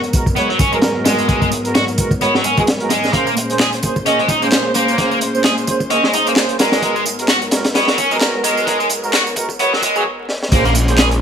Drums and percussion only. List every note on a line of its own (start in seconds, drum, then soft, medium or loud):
0.03 closed hi-hat soft
0.03 tambourine soft
0.13 kick loud
0.13 closed hi-hat medium
0.13 tambourine medium
0.26 kick medium
0.26 tambourine soft
0.36 closed hi-hat medium
0.36 tambourine soft
0.50 closed hi-hat soft
0.59 kick loud
0.59 closed hi-hat medium
0.59 tambourine medium
0.73 tambourine soft
0.82 snare loud
0.82 closed hi-hat medium
0.82 tambourine soft
1.05 snare medium
1.05 closed hi-hat medium
1.05 tambourine medium
1.19 closed hi-hat soft
1.19 tambourine soft
1.29 kick medium
1.29 closed hi-hat medium
1.29 tambourine soft
1.42 kick medium
1.42 tambourine soft
1.52 closed hi-hat medium
1.52 tambourine medium
1.65 closed hi-hat soft
1.65 tambourine soft
1.75 snare loud
1.75 closed hi-hat medium
1.75 tambourine soft
1.88 tambourine soft
1.98 kick medium
1.98 closed hi-hat medium
1.98 tambourine medium
2.11 kick medium
2.11 tambourine soft
2.21 closed hi-hat medium
2.21 tambourine soft
2.35 snare soft
2.44 closed hi-hat medium
2.44 tambourine medium
2.57 kick medium
2.57 tambourine soft
2.67 snare loud
2.67 closed hi-hat medium
2.67 tambourine soft
2.80 closed hi-hat soft
2.90 snare soft
2.90 closed hi-hat medium
2.90 tambourine medium
3.04 snare soft
3.04 tambourine soft
3.13 kick loud
3.13 closed hi-hat medium
3.13 tambourine soft
3.27 tambourine soft
3.37 closed hi-hat medium
3.37 tambourine medium
3.50 closed hi-hat soft
3.50 tambourine soft
3.59 snare loud
3.59 clap loud
3.59 closed hi-hat medium
3.59 tambourine soft
3.73 closed hi-hat soft
3.73 tambourine soft
3.83 kick loud
3.83 closed hi-hat medium
3.83 tambourine medium
3.96 kick loud
3.96 tambourine soft
4.06 closed hi-hat medium
4.06 tambourine soft
4.19 closed hi-hat soft
4.28 kick loud
4.28 closed hi-hat medium
4.28 tambourine medium
4.42 tambourine soft
4.52 snare loud
4.52 clap loud
4.52 closed hi-hat medium
4.52 tambourine soft
4.74 closed hi-hat medium
4.74 tambourine medium
4.88 tambourine soft
4.98 kick loud
4.98 closed hi-hat medium
4.98 tambourine soft
5.11 tambourine soft
5.21 closed hi-hat medium
5.21 tambourine medium
5.35 tambourine soft
5.44 snare loud
5.44 clap loud
5.44 closed hi-hat medium
5.44 tambourine soft
5.58 tambourine soft
5.67 kick loud
5.67 closed hi-hat medium
5.67 tambourine medium
5.80 kick medium
5.80 tambourine soft
5.90 closed hi-hat loud
5.90 tambourine soft
6.04 snare medium
6.13 closed hi-hat medium
6.13 tambourine medium
6.27 closed hi-hat soft
6.27 tambourine soft
6.36 snare loud
6.36 clap medium
6.36 closed hi-hat medium
6.36 tambourine soft
6.49 closed hi-hat soft
6.59 snare loud
6.59 closed hi-hat medium
6.59 tambourine medium
6.72 snare loud
6.72 closed hi-hat medium
6.72 tambourine soft
6.82 kick loud
6.82 closed hi-hat medium
6.82 tambourine soft
6.96 tambourine soft
7.06 closed hi-hat medium
7.06 tambourine medium
7.19 closed hi-hat soft
7.19 tambourine soft
7.28 snare loud
7.28 clap loud
7.28 closed hi-hat medium
7.28 tambourine soft
7.42 closed hi-hat soft
7.42 tambourine soft
7.51 snare loud
7.51 closed hi-hat medium
7.51 tambourine medium
7.64 snare loud
7.64 closed hi-hat medium
7.64 tambourine soft
7.75 snare loud
7.75 closed hi-hat medium
7.75 tambourine soft
7.88 snare loud
7.88 closed hi-hat medium
7.98 kick medium
7.98 closed hi-hat medium
7.98 tambourine medium
8.11 tambourine soft
8.21 snare loud
8.21 clap loud
8.21 closed hi-hat medium
8.21 tambourine soft
8.44 closed hi-hat medium
8.44 tambourine medium
8.57 tambourine soft
8.67 kick loud
8.67 closed hi-hat loud
8.67 tambourine soft
8.80 tambourine soft
8.89 closed hi-hat medium
8.89 tambourine medium
9.04 tambourine soft
9.13 snare loud
9.13 clap loud
9.13 closed hi-hat medium
9.13 tambourine soft
9.27 tambourine soft
9.36 kick loud
9.36 closed hi-hat medium
9.36 tambourine medium
9.49 kick loud
9.49 tambourine soft
9.59 closed hi-hat medium
9.59 tambourine soft
9.73 snare soft
9.82 kick loud
9.82 closed hi-hat medium
9.82 tambourine medium
9.96 tambourine soft
10.29 snare medium
10.43 snare medium
10.52 kick loud
10.52 closed hi-hat medium
10.52 crash medium
10.52 tambourine soft
10.65 tambourine soft
10.75 closed hi-hat medium
10.75 tambourine medium
10.88 closed hi-hat soft
10.88 tambourine soft
10.98 snare loud
10.98 clap loud
10.98 closed hi-hat medium
10.98 tambourine soft
11.11 closed hi-hat soft
11.11 tambourine soft